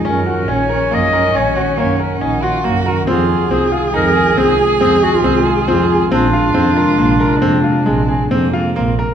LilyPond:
<<
  \new Staff \with { instrumentName = "Clarinet" } { \time 7/4 \key ees \dorian \tempo 4 = 138 bes'4 des''4 ees''4 des''4 des''8 r2 r8 | f'4 aes'4 bes'4 aes'4 aes'8 ges'16 f'4~ f'16 f'4 | d'1. r4 | }
  \new Staff \with { instrumentName = "Grand piano" } { \time 7/4 \key ees \dorian des'8 ges'8 des'8 bes'8 bes8 bes'8 des'8 ges'8 bes8 bes'8 des'8 ges'8 bes8 bes'8 | c'8 aes'8 c'8 f'8 ees'8 aes'8 c'8 aes'8 c'8 aes'8 c'8 aes'8 c'8 aes'8 | c'8 f'8 c'8 bes'8 bes8 bes'8 c'8 f'8 aes8 aes'8 c'8 f'8 bes8 bes'8 | }
  \new Staff \with { instrumentName = "Cello" } { \time 7/4 \key ees \dorian des'1~ des'4 ees'8 f'8 ges'4 | aes'1.~ aes'4 | f'2. bes4 c'4 bes4 c'8 bes8 | }
  \new Staff \with { instrumentName = "Ambient pad" } { \time 7/4 \key ees \dorian << { <des' ges'>1.~ <des' ges'>4 | <aes f'>1.~ <aes f'>4 | <aes d'>1.~ <aes d'>4 | } \\ { ees1.~ ees4~ | ees1.~ ees4 | c1.~ c4 | } >> }
  \new Staff \with { instrumentName = "Double bass" } { \clef bass \time 7/4 \key ees \dorian ges,4 bes,,8 r8 ges,4 bes,,8 r8 ges,4 bes,,8 r8 ges,4 | f,4 c,8 r8 f,4 c,8 r8 f,4 c,8 r8 f,4 | bes,,4 f,8 r8 bes,,4 f,8 r8 bes,,4 f,8 r8 bes,,4 | }
>>